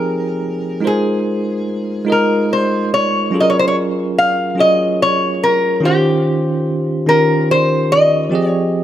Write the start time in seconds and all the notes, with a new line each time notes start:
Already playing: F3 C4 D#4 G4 G#4 A#4 G5
0.81 G#3 D#4 F4 A#4
0.85 G#4 C5
2.05 G#3 D#4 F4 A#4
2.10 A#4 D#5
2.53 C5
2.94 C#5
3.31 F#3 C#4 F4 G#4
3.36 A4
3.40 A#4 D#5
3.50 C#5
3.59 C5
3.68 C#5
4.18 F5
4.55 F#3 C#4 F4 G#4
4.59 C#5 D#5
5.02 C#5
5.43 A#4
5.80 D#3 C#4 F4
5.85 G4 C5
7.07 D#3 C#4 F4 G4 A#4
7.11 A#4
7.51 C5
7.92 D#5
8.30 F3 C4 G4 G#4
8.35 D#5
8.49 C#5